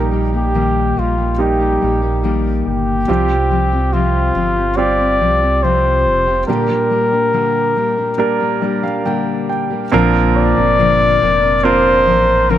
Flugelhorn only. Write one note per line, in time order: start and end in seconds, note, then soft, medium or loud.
0.36 1.00 G4 medium
0.99 1.40 F4 medium
1.42 2.21 G4 medium
2.67 3.94 G4 medium
3.93 4.78 F4 medium
4.77 5.65 D5 medium
5.63 6.47 C5 medium
6.47 9.45 A#4 medium
10.36 11.65 D5 loud
11.64 12.51 C5 loud
12.50 12.58 A#4 medium